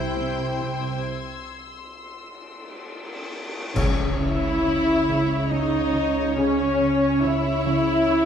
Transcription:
0, 0, Header, 1, 14, 480
1, 0, Start_track
1, 0, Tempo, 898204
1, 564, Time_signature, 3, 2, 24, 8
1, 2009, Tempo, 869565
1, 4489, End_track
2, 0, Start_track
2, 0, Title_t, "Violin section"
2, 0, Program_c, 0, 48
2, 0, Note_on_c, 0, 84, 50
2, 0, Note_on_c, 0, 88, 45
2, 0, Note_on_c, 0, 91, 49
2, 381, Note_off_c, 0, 91, 0
2, 381, Note_on_c, 0, 92, 49
2, 785, Note_off_c, 0, 92, 0
2, 1746, Note_off_c, 0, 84, 0
2, 1753, Note_off_c, 0, 88, 0
2, 4489, End_track
3, 0, Start_track
3, 0, Title_t, "Violin section"
3, 0, Program_c, 1, 48
3, 0, Note_on_c, 1, 79, 59
3, 540, Note_off_c, 1, 79, 0
3, 2250, Note_on_c, 1, 76, 71
3, 2954, Note_off_c, 1, 76, 0
3, 2977, Note_on_c, 1, 75, 62
3, 3455, Note_off_c, 1, 75, 0
3, 3460, Note_on_c, 1, 73, 60
3, 3924, Note_off_c, 1, 73, 0
3, 3934, Note_on_c, 1, 76, 65
3, 4489, Note_off_c, 1, 76, 0
3, 4489, End_track
4, 0, Start_track
4, 0, Title_t, "Violin section"
4, 0, Program_c, 2, 48
4, 0, Note_on_c, 2, 72, 66
4, 539, Note_off_c, 2, 72, 0
4, 2016, Note_on_c, 2, 73, 52
4, 2018, Note_off_c, 2, 73, 0
4, 2018, Note_on_c, 2, 73, 60
4, 4489, Note_off_c, 2, 73, 0
4, 4489, End_track
5, 0, Start_track
5, 0, Title_t, "French horn section"
5, 0, Program_c, 3, 60
5, 2013, Note_on_c, 3, 61, 52
5, 2015, Note_on_c, 3, 68, 58
5, 2193, Note_off_c, 3, 61, 0
5, 2194, Note_off_c, 3, 68, 0
5, 3446, Note_on_c, 3, 68, 57
5, 3448, Note_on_c, 3, 61, 51
5, 3627, Note_off_c, 3, 68, 0
5, 3628, Note_off_c, 3, 61, 0
5, 4489, End_track
6, 0, Start_track
6, 0, Title_t, "Viola section"
6, 0, Program_c, 4, 48
6, 0, Note_on_c, 4, 64, 61
6, 564, Note_off_c, 4, 64, 0
6, 2251, Note_on_c, 4, 64, 75
6, 2954, Note_off_c, 4, 64, 0
6, 2981, Note_on_c, 4, 63, 67
6, 3457, Note_on_c, 4, 61, 69
6, 3458, Note_off_c, 4, 63, 0
6, 3922, Note_off_c, 4, 61, 0
6, 3929, Note_on_c, 4, 64, 81
6, 4489, Note_off_c, 4, 64, 0
6, 4489, End_track
7, 0, Start_track
7, 0, Title_t, "Trombone section"
7, 0, Program_c, 5, 61
7, 2003, Note_on_c, 5, 49, 54
7, 2003, Note_on_c, 5, 61, 52
7, 2187, Note_off_c, 5, 49, 0
7, 2188, Note_off_c, 5, 61, 0
7, 3457, Note_on_c, 5, 49, 51
7, 3457, Note_on_c, 5, 61, 56
7, 3633, Note_off_c, 5, 49, 0
7, 3634, Note_off_c, 5, 61, 0
7, 4489, End_track
8, 0, Start_track
8, 0, Title_t, "Cello section"
8, 0, Program_c, 6, 48
8, 91, Note_on_c, 6, 60, 43
8, 232, Note_off_c, 6, 60, 0
8, 328, Note_on_c, 6, 48, 42
8, 471, Note_off_c, 6, 48, 0
8, 2012, Note_on_c, 6, 49, 67
8, 2157, Note_off_c, 6, 49, 0
8, 2253, Note_on_c, 6, 49, 46
8, 2398, Note_off_c, 6, 49, 0
8, 2493, Note_on_c, 6, 49, 43
8, 2638, Note_off_c, 6, 49, 0
8, 2739, Note_on_c, 6, 49, 61
8, 2882, Note_off_c, 6, 49, 0
8, 2973, Note_on_c, 6, 61, 48
8, 3118, Note_off_c, 6, 61, 0
8, 3212, Note_on_c, 6, 49, 42
8, 3356, Note_off_c, 6, 49, 0
8, 3451, Note_on_c, 6, 49, 60
8, 3595, Note_off_c, 6, 49, 0
8, 3689, Note_on_c, 6, 49, 46
8, 3833, Note_off_c, 6, 49, 0
8, 3931, Note_on_c, 6, 49, 43
8, 4074, Note_off_c, 6, 49, 0
8, 4163, Note_on_c, 6, 49, 61
8, 4309, Note_off_c, 6, 49, 0
8, 4405, Note_on_c, 6, 61, 46
8, 4489, Note_off_c, 6, 61, 0
8, 4489, End_track
9, 0, Start_track
9, 0, Title_t, "Timpani"
9, 0, Program_c, 7, 47
9, 2008, Note_on_c, 7, 49, 73
9, 2713, Note_off_c, 7, 49, 0
9, 4489, End_track
10, 0, Start_track
10, 0, Title_t, "Cello section"
10, 0, Program_c, 8, 48
10, 0, Note_on_c, 8, 48, 64
10, 539, Note_off_c, 8, 48, 0
10, 2008, Note_on_c, 8, 49, 55
10, 4489, Note_off_c, 8, 49, 0
10, 4489, End_track
11, 0, Start_track
11, 0, Title_t, "Double bass section"
11, 0, Program_c, 10, 48
11, 0, Note_on_c, 10, 36, 66
11, 542, Note_off_c, 10, 36, 0
11, 2011, Note_on_c, 10, 37, 59
11, 4489, Note_off_c, 10, 37, 0
11, 4489, End_track
12, 0, Start_track
12, 0, Title_t, "Cymbal swell"
12, 0, Program_c, 11, 119
12, 563, Note_on_c, 11, 60, 47
12, 2007, Note_off_c, 11, 60, 0
12, 4489, End_track
13, 0, Start_track
13, 0, Title_t, "Impact"
13, 0, Program_c, 12, 103
13, 2011, Note_on_c, 12, 60, 51
13, 3457, Note_off_c, 12, 60, 0
13, 4489, End_track
14, 0, Start_track
14, 0, Title_t, "Drums"
14, 2009, Note_on_c, 9, 35, 71
14, 2009, Note_on_c, 9, 49, 70
14, 2064, Note_off_c, 9, 35, 0
14, 2064, Note_off_c, 9, 49, 0
14, 4489, End_track
0, 0, End_of_file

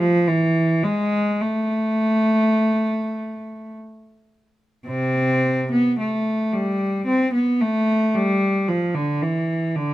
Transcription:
0, 0, Header, 1, 2, 480
1, 0, Start_track
1, 0, Tempo, 1147228
1, 600, Time_signature, 3, 2, 24, 8
1, 2046, Tempo, 1083032
1, 4283, End_track
2, 0, Start_track
2, 0, Title_t, "Cello"
2, 0, Program_c, 0, 42
2, 0, Note_on_c, 0, 53, 74
2, 114, Note_on_c, 0, 52, 71
2, 116, Note_off_c, 0, 53, 0
2, 349, Note_on_c, 0, 56, 71
2, 356, Note_off_c, 0, 52, 0
2, 591, Note_on_c, 0, 57, 69
2, 595, Note_off_c, 0, 56, 0
2, 1564, Note_off_c, 0, 57, 0
2, 2040, Note_on_c, 0, 48, 52
2, 2040, Note_on_c, 0, 60, 64
2, 2391, Note_off_c, 0, 48, 0
2, 2391, Note_off_c, 0, 60, 0
2, 2413, Note_on_c, 0, 59, 61
2, 2533, Note_off_c, 0, 59, 0
2, 2536, Note_on_c, 0, 57, 54
2, 2769, Note_off_c, 0, 57, 0
2, 2771, Note_on_c, 0, 55, 57
2, 3010, Note_on_c, 0, 60, 64
2, 3011, Note_off_c, 0, 55, 0
2, 3128, Note_off_c, 0, 60, 0
2, 3131, Note_on_c, 0, 59, 57
2, 3249, Note_off_c, 0, 59, 0
2, 3251, Note_on_c, 0, 57, 68
2, 3488, Note_on_c, 0, 55, 68
2, 3492, Note_off_c, 0, 57, 0
2, 3727, Note_on_c, 0, 53, 58
2, 3729, Note_off_c, 0, 55, 0
2, 3845, Note_on_c, 0, 50, 65
2, 3849, Note_off_c, 0, 53, 0
2, 3965, Note_on_c, 0, 52, 57
2, 3967, Note_off_c, 0, 50, 0
2, 4204, Note_on_c, 0, 50, 62
2, 4206, Note_off_c, 0, 52, 0
2, 4283, Note_off_c, 0, 50, 0
2, 4283, End_track
0, 0, End_of_file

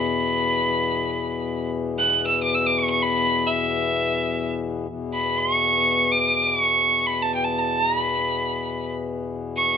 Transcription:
0, 0, Header, 1, 3, 480
1, 0, Start_track
1, 0, Tempo, 500000
1, 9383, End_track
2, 0, Start_track
2, 0, Title_t, "Violin"
2, 0, Program_c, 0, 40
2, 0, Note_on_c, 0, 83, 82
2, 1637, Note_off_c, 0, 83, 0
2, 1913, Note_on_c, 0, 90, 88
2, 2158, Note_off_c, 0, 90, 0
2, 2177, Note_on_c, 0, 88, 82
2, 2321, Note_off_c, 0, 88, 0
2, 2333, Note_on_c, 0, 86, 80
2, 2448, Note_on_c, 0, 88, 85
2, 2463, Note_off_c, 0, 86, 0
2, 2558, Note_on_c, 0, 86, 86
2, 2573, Note_off_c, 0, 88, 0
2, 2679, Note_on_c, 0, 85, 87
2, 2693, Note_off_c, 0, 86, 0
2, 2777, Note_off_c, 0, 85, 0
2, 2783, Note_on_c, 0, 85, 89
2, 2903, Note_on_c, 0, 83, 95
2, 2918, Note_off_c, 0, 85, 0
2, 3332, Note_on_c, 0, 76, 77
2, 3346, Note_off_c, 0, 83, 0
2, 4342, Note_off_c, 0, 76, 0
2, 4934, Note_on_c, 0, 83, 73
2, 5162, Note_on_c, 0, 84, 93
2, 5176, Note_off_c, 0, 83, 0
2, 5306, Note_off_c, 0, 84, 0
2, 5306, Note_on_c, 0, 85, 93
2, 5877, Note_on_c, 0, 86, 85
2, 5892, Note_off_c, 0, 85, 0
2, 6215, Note_off_c, 0, 86, 0
2, 6215, Note_on_c, 0, 86, 90
2, 6340, Note_off_c, 0, 86, 0
2, 6340, Note_on_c, 0, 85, 90
2, 6782, Note_on_c, 0, 83, 82
2, 6796, Note_off_c, 0, 85, 0
2, 6934, Note_on_c, 0, 81, 73
2, 6948, Note_off_c, 0, 83, 0
2, 7051, Note_off_c, 0, 81, 0
2, 7056, Note_on_c, 0, 79, 74
2, 7145, Note_on_c, 0, 81, 63
2, 7160, Note_off_c, 0, 79, 0
2, 7283, Note_off_c, 0, 81, 0
2, 7283, Note_on_c, 0, 81, 75
2, 7523, Note_off_c, 0, 81, 0
2, 7523, Note_on_c, 0, 82, 75
2, 7667, Note_off_c, 0, 82, 0
2, 7667, Note_on_c, 0, 83, 75
2, 8580, Note_off_c, 0, 83, 0
2, 9184, Note_on_c, 0, 85, 83
2, 9383, Note_off_c, 0, 85, 0
2, 9383, End_track
3, 0, Start_track
3, 0, Title_t, "Harmonium"
3, 0, Program_c, 1, 20
3, 0, Note_on_c, 1, 40, 65
3, 0, Note_on_c, 1, 47, 67
3, 4675, Note_off_c, 1, 40, 0
3, 4678, Note_off_c, 1, 47, 0
3, 4689, Note_on_c, 1, 40, 53
3, 4693, Note_on_c, 1, 47, 57
3, 9383, Note_off_c, 1, 40, 0
3, 9383, Note_off_c, 1, 47, 0
3, 9383, End_track
0, 0, End_of_file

